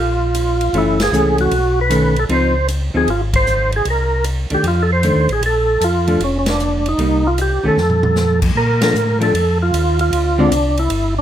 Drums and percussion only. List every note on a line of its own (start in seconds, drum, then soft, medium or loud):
0.35 hi-hat pedal soft
0.35 ride medium
0.61 ride soft
0.74 ride soft
1.00 snare medium
1.00 ride medium
1.13 hi-hat pedal soft
1.38 ride soft
1.51 ride medium
1.90 hi-hat pedal soft
1.90 ride medium
2.16 ride soft
2.29 ride soft
2.68 hi-hat pedal soft
2.68 ride medium
3.08 ride soft
3.33 kick medium
3.33 ride medium
3.47 hi-hat pedal medium
3.72 ride soft
3.85 ride soft
4.24 hi-hat pedal soft
4.24 ride medium
4.50 ride soft
4.64 ride soft
5.03 hi-hat pedal soft
5.03 ride soft
5.29 ride soft
5.43 ride medium
5.81 hi-hat pedal soft
5.81 ride medium
6.07 ride soft
6.20 ride soft
6.46 snare medium
6.46 ride medium
6.60 hi-hat pedal soft
6.86 ride soft
6.99 ride soft
7.38 hi-hat pedal soft
7.38 ride soft
7.78 snare soft
7.90 mid tom soft
8.03 mid tom medium
8.16 snare soft
8.16 hi-hat pedal soft
8.42 kick medium
8.42 crash medium
8.82 snare medium
8.82 ride medium
8.95 hi-hat pedal medium
9.21 ride soft
9.35 ride medium
9.74 hi-hat pedal soft
9.74 ride medium
9.99 ride soft
10.13 ride medium
10.52 hi-hat pedal soft
10.52 ride medium
10.77 ride soft
10.90 ride medium